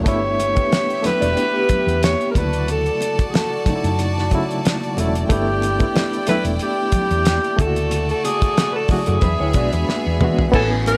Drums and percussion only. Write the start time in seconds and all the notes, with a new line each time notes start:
0.06 kick, closed hi-hat, muted conga
0.40 closed hi-hat, muted conga
0.56 kick, closed hi-hat
0.72 snare, closed hi-hat, high conga
0.90 closed hi-hat
1.04 snare, closed hi-hat, muted conga, low conga
1.22 closed hi-hat
1.37 closed hi-hat, muted conga
1.69 kick, closed hi-hat, low conga
1.88 closed hi-hat
2.03 snare, closed hi-hat, high conga
2.21 closed hi-hat
2.35 kick, closed hi-hat, high conga
2.53 closed hi-hat
2.68 closed hi-hat, muted conga
2.86 closed hi-hat
3.01 closed hi-hat, muted conga
3.19 kick, closed hi-hat
3.34 snare, closed hi-hat, high conga
3.66 kick, closed hi-hat, muted conga, low conga
3.84 closed hi-hat
3.99 closed hi-hat, muted conga
4.18 snare
4.31 kick, closed hi-hat
4.51 closed hi-hat
4.65 snare, closed hi-hat, high conga
4.83 closed hi-hat
4.97 closed hi-hat, high conga
5.15 closed hi-hat
5.30 kick, closed hi-hat, muted conga
5.62 closed hi-hat, muted conga
5.80 kick, closed hi-hat
5.96 snare, closed hi-hat, high conga
6.13 closed hi-hat
6.27 snare, closed hi-hat, muted conga, low conga
6.45 closed hi-hat
6.59 closed hi-hat, muted conga
6.92 kick, closed hi-hat, low conga
7.11 closed hi-hat
7.25 snare, closed hi-hat, high conga
7.44 closed hi-hat
7.59 kick, closed hi-hat, high conga
7.76 closed hi-hat
7.91 closed hi-hat, muted conga
8.09 closed hi-hat
8.25 closed hi-hat, muted conga
8.42 kick, closed hi-hat
8.57 snare, closed hi-hat, high conga
8.88 kick, open hi-hat, muted conga, low conga
9.06 closed hi-hat
9.21 kick, closed hi-hat, muted conga, low conga
9.53 kick, closed hi-hat
9.73 closed hi-hat
9.89 snare, high conga
10.21 mid tom, high conga
10.39 floor tom
10.54 kick, crash, muted conga
10.86 closed hi-hat, muted conga